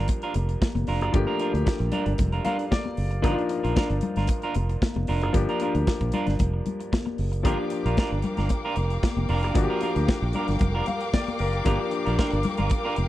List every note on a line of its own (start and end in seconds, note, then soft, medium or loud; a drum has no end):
0.00 1.09 F3 medium
0.00 1.09 A#3 medium
0.00 1.10 D4 medium
0.00 1.10 G4 medium
0.08 muted clean electric guitar stroke soft
0.08 kick medium
0.08 closed hi-hat medium
0.08 muted conga medium
0.22 0.34 D4 medium
0.22 0.35 F4 medium
0.22 0.35 A#4 medium
0.22 closed hi-hat soft
0.34 0.55 F1 loud
0.34 closed hi-hat medium
0.34 muted conga medium
0.49 muted clean electric guitar stroke soft
0.49 closed hi-hat soft
0.61 muted clean electric guitar stroke soft
0.61 kick loud
0.61 snare loud
0.61 high conga medium
0.75 0.84 F1 medium
0.75 muted clean electric guitar stroke soft
0.75 closed hi-hat soft
0.75 high conga medium
0.87 1.02 F1 medium
0.87 1.02 D4 medium
0.87 1.01 F4 medium
0.87 1.00 A#4 loud
0.87 open hi-hat medium
1.01 1.11 F#1 medium
1.01 1.12 D4 medium
1.01 1.13 F4 medium
1.01 1.13 A#4 medium
1.01 closed hi-hat soft
1.12 1.24 G1 medium
1.12 3.19 F3 medium
1.12 1.20 A3 medium
1.12 3.20 D4 medium
1.12 3.21 G4 medium
1.12 muted clean electric guitar stroke soft
1.12 kick loud
1.12 closed hi-hat medium
1.12 muted conga soft
1.19 3.22 A#3 medium
1.27 1.39 D4 medium
1.27 1.39 F4 medium
1.27 1.40 A#4 medium
1.40 1.56 D4 medium
1.40 1.53 F4 medium
1.40 1.53 A#4 medium
1.40 closed hi-hat medium
1.54 1.63 D2 medium
1.54 muted clean electric guitar stroke soft
1.54 closed hi-hat soft
1.66 muted clean electric guitar stroke soft
1.66 kick loud
1.66 snare loud
1.66 high conga medium
1.80 1.89 A#1 medium
1.80 muted clean electric guitar stroke soft
1.80 closed hi-hat soft
1.92 2.12 D4 medium
1.92 2.06 F4 medium
1.92 2.05 A#4 medium
1.92 closed hi-hat medium
1.92 low conga medium
2.06 2.16 G1 medium
2.06 muted clean electric guitar stroke soft
2.06 closed hi-hat soft
2.06 low conga medium
2.18 2.39 F1 medium
2.18 muted clean electric guitar stroke soft
2.18 kick loud
2.18 closed hi-hat medium
2.18 muted conga medium
2.18 low conga medium
2.32 2.43 D4 soft
2.32 2.44 F4 soft
2.32 2.44 A#4 medium
2.32 closed hi-hat soft
2.44 2.64 D4 medium
2.44 2.58 F4 loud
2.44 2.57 A#4 medium
2.44 2.69 F5 medium
2.44 closed hi-hat medium
2.44 muted conga medium
2.44 low conga medium
2.58 muted clean electric guitar stroke soft
2.58 closed hi-hat soft
2.71 3.20 D5 medium
2.71 muted clean electric guitar stroke soft
2.71 kick loud
2.71 snare loud
2.71 high conga medium
2.84 muted clean electric guitar stroke soft
2.84 high conga medium
2.97 3.24 F#1 medium
2.97 open hi-hat medium
3.11 muted clean electric guitar stroke soft
3.11 closed hi-hat soft
3.22 3.35 G1 loud
3.22 5.29 F3 medium
3.22 5.30 A#3 medium
3.22 3.43 D4 medium
3.22 5.30 D4 medium
3.22 3.31 D#4 medium
3.22 3.37 F4 loud
3.22 3.35 A#4 medium
3.22 kick loud
3.22 closed hi-hat medium
3.22 muted conga soft
3.32 5.34 F4 medium
3.37 muted clean electric guitar stroke soft
3.37 closed hi-hat soft
3.49 muted clean electric guitar stroke soft
3.49 closed hi-hat medium
3.63 3.74 A#1 medium
3.63 3.74 D4 soft
3.63 3.75 F4 medium
3.63 3.76 A#4 medium
3.63 closed hi-hat soft
3.76 3.96 D4 medium
3.76 3.90 F4 medium
3.76 3.89 A#4 medium
3.76 kick loud
3.76 snare loud
3.76 high conga medium
3.90 4.00 G1 medium
3.90 muted clean electric guitar stroke soft
3.90 closed hi-hat soft
4.01 muted clean electric guitar stroke soft
4.01 closed hi-hat medium
4.01 low conga medium
4.16 4.26 G1 medium
4.16 4.28 D4 soft
4.16 4.28 F4 medium
4.16 4.29 A#4 medium
4.16 snare soft
4.16 closed hi-hat soft
4.16 low conga medium
4.27 muted clean electric guitar stroke soft
4.27 kick loud
4.27 closed hi-hat medium
4.27 muted conga medium
4.42 4.55 D4 medium
4.42 4.55 F4 medium
4.42 4.55 A#4 medium
4.42 closed hi-hat soft
4.55 4.76 F1 medium
4.55 closed hi-hat medium
4.55 muted conga medium
4.69 muted clean electric guitar stroke soft
4.69 closed hi-hat soft
4.82 muted clean electric guitar stroke soft
4.82 kick loud
4.82 snare loud
4.82 high conga medium
4.96 5.05 F1 medium
4.96 muted clean electric guitar stroke soft
4.96 high conga medium
5.07 5.23 F1 medium
5.07 5.22 D4 medium
5.07 5.22 F4 medium
5.07 5.21 A#4 medium
5.07 open hi-hat medium
5.22 5.32 F#1 medium
5.22 5.34 D4 soft
5.22 5.34 F4 medium
5.22 5.35 A#4 medium
5.22 closed hi-hat soft
5.33 5.45 G1 loud
5.33 7.40 F3 medium
5.33 7.41 A#3 medium
5.33 7.41 D4 medium
5.33 7.42 G4 medium
5.33 muted clean electric guitar stroke soft
5.33 kick loud
5.33 closed hi-hat medium
5.33 muted conga medium
5.49 5.60 D4 medium
5.49 5.61 F4 medium
5.49 5.61 A#4 medium
5.49 closed hi-hat soft
5.60 5.77 D4 medium
5.60 5.75 F4 medium
5.60 5.74 A#4 medium
5.60 closed hi-hat medium
5.60 muted conga soft
5.75 5.84 D2 medium
5.75 muted clean electric guitar stroke soft
5.75 closed hi-hat medium
5.87 muted clean electric guitar stroke soft
5.87 kick loud
5.87 snare loud
5.87 high conga medium
6.01 6.10 A#1 medium
6.01 muted clean electric guitar stroke soft
6.01 kick medium
6.01 closed hi-hat soft
6.12 6.33 D4 medium
6.12 6.27 F4 medium
6.12 6.26 A#4 medium
6.12 closed hi-hat medium
6.12 low conga medium
6.27 6.37 G1 medium
6.27 muted clean electric guitar stroke soft
6.27 snare soft
6.27 closed hi-hat soft
6.27 low conga medium
6.39 6.60 F1 medium
6.39 muted clean electric guitar stroke soft
6.39 kick medium
6.39 closed hi-hat medium
6.39 muted conga medium
6.39 low conga medium
6.54 muted clean electric guitar stroke soft
6.66 closed hi-hat medium
6.66 muted conga soft
6.66 low conga medium
6.80 muted clean electric guitar stroke soft
6.80 closed hi-hat soft
6.92 muted clean electric guitar stroke soft
6.92 kick loud
6.92 snare loud
6.92 high conga medium
7.06 muted clean electric guitar stroke medium
7.06 high conga medium
7.18 7.45 F#1 medium
7.18 open hi-hat medium
7.32 muted clean electric guitar stroke soft
7.32 closed hi-hat soft
7.43 7.56 G1 medium
7.43 9.51 F3 medium
7.43 9.51 A#3 medium
7.43 7.64 D4 medium
7.43 9.52 D4 medium
7.43 7.59 F4 loud
7.43 9.52 G4 medium
7.43 13.08 A#4 medium
7.43 7.58 A#4 medium
7.43 13.08 F5 medium
7.43 13.08 G5 medium
7.43 13.08 D6 medium
7.43 kick loud
7.43 closed hi-hat medium
7.43 muted conga soft
7.59 muted clean electric guitar stroke soft
7.70 muted clean electric guitar stroke soft
7.70 closed hi-hat medium
7.85 7.95 A#1 medium
7.85 7.97 D4 medium
7.85 7.97 F4 medium
7.85 7.98 A#4 medium
7.85 closed hi-hat medium
7.97 8.18 D4 medium
7.97 8.12 F4 medium
7.97 8.11 A#4 medium
7.97 kick loud
7.97 snare loud
7.97 high conga medium
8.12 8.21 G1 medium
8.12 muted clean electric guitar stroke soft
8.22 muted clean electric guitar stroke soft
8.22 closed hi-hat medium
8.22 low conga medium
8.37 8.48 G1 medium
8.37 8.49 D4 soft
8.37 8.49 F4 medium
8.37 8.49 A#4 medium
8.37 snare soft
8.37 closed hi-hat soft
8.37 low conga medium
8.49 muted clean electric guitar stroke soft
8.49 kick medium
8.49 closed hi-hat medium
8.49 muted conga medium
8.65 8.76 D4 medium
8.65 8.76 F4 medium
8.65 8.77 A#4 medium
8.76 8.97 F1 medium
8.76 muted clean electric guitar stroke soft
8.76 closed hi-hat medium
8.76 muted conga soft
8.90 muted clean electric guitar stroke soft
8.90 closed hi-hat soft
9.03 muted clean electric guitar stroke soft
9.03 kick loud
9.03 snare loud
9.03 high conga medium
9.17 9.26 F1 medium
9.17 muted clean electric guitar stroke soft
9.17 high conga medium
9.29 9.44 F1 medium
9.29 9.43 D4 medium
9.29 9.42 F4 medium
9.29 9.42 A#4 medium
9.29 open hi-hat medium
9.43 9.53 F#1 medium
9.43 9.54 D4 medium
9.43 9.55 F4 medium
9.43 9.55 A#4 medium
9.43 closed hi-hat soft
9.54 9.66 G1 loud
9.54 11.61 F3 medium
9.54 11.62 A#3 medium
9.54 11.62 D4 medium
9.54 9.63 F#4 medium
9.54 kick loud
9.54 closed hi-hat medium
9.54 muted conga medium
9.63 11.66 G4 medium
9.70 9.80 D4 medium
9.70 9.81 F4 medium
9.70 9.82 A#4 medium
9.81 9.97 D4 medium
9.81 9.95 F4 medium
9.81 9.94 A#4 medium
9.81 closed hi-hat medium
9.81 muted conga soft
9.95 10.05 D2 medium
9.95 muted clean electric guitar stroke soft
9.95 closed hi-hat medium
10.08 muted clean electric guitar stroke soft
10.08 kick loud
10.08 snare loud
10.08 high conga medium
10.22 10.32 A#1 loud
10.22 muted clean electric guitar stroke soft
10.33 10.54 D4 medium
10.33 10.47 F4 medium
10.33 10.47 A#4 medium
10.33 closed hi-hat medium
10.33 low conga medium
10.48 10.58 G1 medium
10.48 muted clean electric guitar stroke soft
10.48 snare soft
10.48 closed hi-hat soft
10.48 low conga medium
10.59 10.81 F1 medium
10.59 muted clean electric guitar stroke soft
10.59 kick loud
10.59 closed hi-hat medium
10.59 muted conga medium
10.59 low conga medium
10.75 10.85 D4 medium
10.75 10.86 F4 medium
10.75 10.86 A#4 medium
10.86 11.12 F5 medium
10.86 muted clean electric guitar stroke soft
10.86 closed hi-hat medium
10.86 muted conga medium
10.86 low conga medium
11.01 muted clean electric guitar stroke soft
11.01 closed hi-hat soft
11.13 11.38 D5 medium
11.13 muted clean electric guitar stroke soft
11.13 kick loud
11.13 snare loud
11.13 high conga medium
11.27 muted clean electric guitar stroke soft
11.27 closed hi-hat soft
11.27 high conga medium
11.39 11.60 F#1 medium
11.39 11.64 A#4 medium
11.39 open hi-hat medium
11.53 muted clean electric guitar stroke soft
11.53 closed hi-hat soft
11.64 11.77 G1 loud
11.64 13.08 F3 medium
11.64 13.08 A#3 medium
11.64 11.86 D4 medium
11.64 13.08 D4 medium
11.64 11.80 F4 medium
11.64 13.08 G4 medium
11.64 11.79 A#4 medium
11.64 kick loud
11.64 closed hi-hat medium
11.64 muted conga soft
11.80 muted clean electric guitar stroke soft
11.91 muted clean electric guitar stroke soft
11.91 closed hi-hat medium
12.06 12.16 A#1 medium
12.06 12.17 D4 medium
12.06 12.17 F4 medium
12.06 12.18 A#4 medium
12.06 closed hi-hat soft
12.18 12.38 D4 medium
12.18 12.31 F4 medium
12.18 12.31 A#4 loud
12.18 kick loud
12.18 snare loud
12.18 high conga medium
12.32 12.42 G1 loud
12.32 muted clean electric guitar stroke soft
12.32 closed hi-hat soft
12.43 muted clean electric guitar stroke soft
12.43 closed hi-hat medium
12.43 low conga medium
12.57 12.69 G1 medium
12.57 12.70 D4 soft
12.57 12.70 F4 medium
12.57 12.71 A#4 medium
12.57 closed hi-hat soft
12.57 low conga medium
12.70 muted clean electric guitar stroke soft
12.70 kick loud
12.70 closed hi-hat medium
12.70 muted conga medium
12.84 12.96 D4 medium
12.84 12.96 F4 medium
12.84 12.97 A#4 medium
12.96 13.08 F1 loud
12.96 muted clean electric guitar stroke soft
12.96 closed hi-hat medium
12.96 muted conga medium